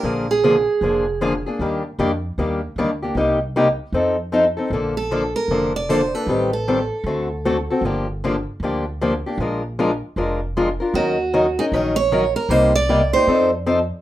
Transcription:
Already playing: A#4
0.03 A#1 D3 F3 A#3 D4 G#4
0.31 G#4
0.44 D3 F3 A#3 D4 G#4
0.81 F1 D3 F3 A#3 D4 G#4
1.21 D3 F3 A#3 D4 G#4
1.46 A#3 D4 G#4
1.59 D#2 D#3 G3 A#3 D4 G4
1.99 F2 D#3 G3 A#3 D4 G4
2.38 D#2 D#3 G3 A#3 D4 G4
2.76 D2 D#3 G3 A#3 D4 G4
3.03 A#3 D4 G4
3.15 C2 C3 G3 A#3 D#4 G4
3.56 C3 G3 A#3 D#4 G4
3.92 F2 F3 C4 D#4 A4
4.32 F3 C4 D#4 A4
4.57 C4 D#4 A4
4.70 A#1 D3 F3 A#3 D4 A4
4.97 A4
5.11 D3 F3 A#3 D4 A4
5.36 A#4
5.48 F1 D3 F3 A#3 D4 A4
5.76 D5
5.89 D3 F3 A#3 D4 A4 C5
6.14 A#3 D4 A4 B4
6.27 A1 D#3 G3 C4 G4 A4
6.53 A4
6.68 D#3 G3 C4 G4 A4
7.04 D2 D3 A3 C4 F#4 A4
7.45 D3 A3 C4 F#4 A4
7.70 C4 F#4 A4
7.81 G1 D3 F3 A#3 D4
7.86 G4
8.24 D3 F3 A#3 D4 G4
8.60 D2 D3 F3 A#3 D4
8.64 G4
9.01 D3 F3 A#3 D4 G4
9.26 A#3 D4 G4
9.38 A#1 F3 G#3 D4 F4 A#4
9.79 F3 G#3 D4 F4 A#4
10.16 F1 F3 G#3 D4 F4 A#4
10.57 F3 G#3 D4 F4 A#4
10.80 D4 F4 A#4
10.94 D#2 D#3 F#3 C#4 D#4 F#4 A#4
11.34 D#3 F#3 C#4 D#4 A#4
11.59 C#4 D#4 G#4 A#4
11.72 A#1 D#3 F#3 C#4 D#4 A#4
11.96 C#5
12.12 D#3 F#3 C#4 D#4 A#4
12.36 A#4
12.49 C2 C3 G3 A#3 D#4 G4 C5
12.75 D5
12.89 C3 G3 A#3 D#4 G4
13.13 A#3 D#4 G4 C5
13.27 F2 F3 C4 D#4 A4
13.66 F3 C4 D#4 A4

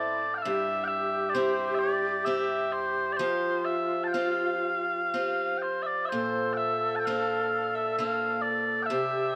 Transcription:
Already playing: A2 C4 E4 A4 D5
0.34 F5 G5
0.42 G2 G4 E5
0.84 E5 G5
1.29 D5
1.34 C4 E4 G4 C5
1.75 D5 E5
2.25 C4 E4 G4 E5
2.72 C5
3.13 D5
3.17 F3 G4 C5
3.21 F4
3.65 E5
4.04 G5 A5
4.13 C4 F4 G4 F5
5.14 C4 F4 G4
5.58 G5
5.62 C5
5.83 D5 E5
6.05 C5 E5
6.11 A#2 A4 C5
6.53 E5 G5
6.96 G5 A5
7.05 A#3 D4 C5 F5
7.75 E5
7.96 A#3 D4 F5
8.00 C5
8.42 D5
8.82 E5 G5
8.90 C3 G4 C5

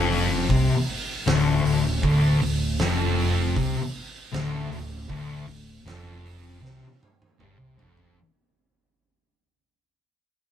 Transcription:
Already playing: F1 F2
0.12 open hi-hat
0.49 C2 C3, kick, open hi-hat
0.88 open hi-hat
1.26 D1 D2, snare, open hi-hat
1.65 D1 D2, open hi-hat
2.03 D1 D2, kick, open hi-hat
2.42 D1 D2, open hi-hat
2.79 F1 F2, snare, open hi-hat
3.18 open hi-hat
3.56 C2 C3, kick, open hi-hat
3.95 open hi-hat
4.32 D1 D2, snare, open hi-hat
4.70 D1 D2, open hi-hat
5.10 D1 D2, kick, open hi-hat
5.47 D1 D2, open hi-hat
5.84 F1 F2, snare, open hi-hat
6.26 open hi-hat
6.61 C2 C3, snare
7.03 high tom
7.22 high tom
7.39 G1 G2, mid tom
7.58 C2 C3
7.77 F1 F2, floor tom
7.97 floor tom

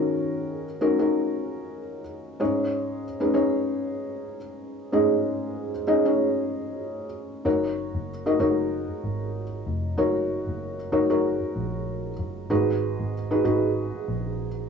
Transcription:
Already playing: D#3 C#4 D#4 F#4 A#4
0.81 C#4 D#4 F#4 A#4
0.99 C#4 D#4 F#4 A#4
2.40 G#2 C#4 D#4 G#4 C#5
3.20 C#4 D#4 G#4 B4
3.34 C#4 D#4 G#4 C#5
4.92 G#2 C#4 D#4 G#4 D#5
5.87 C#4 D#4 G#4 D#5
6.05 C#4 D#4 G#4 C#5
7.45 F#1 D#4 F#4 A#4 C#5
7.95 F#1
8.26 D#4 F#4 A#4 D#5
8.40 F#1 D#4 F#4 A#4 C#5
9.03 G#1
9.66 F1
9.97 F#1 D#4 F#4 A#4 C#5
10.47 F#1
10.92 F#1 D#4 F#4 A#4 C#5
11.10 D#4 F#4 A#4 C#5
11.55 A#1
12.19 F#1
12.50 G#1 G#2 D#4 F#4 G#4 B4
12.99 G#1
13.30 D#4 F#4 G#4 B4
13.44 G#1 D#4 F#4 G#4 B4
14.08 A#1

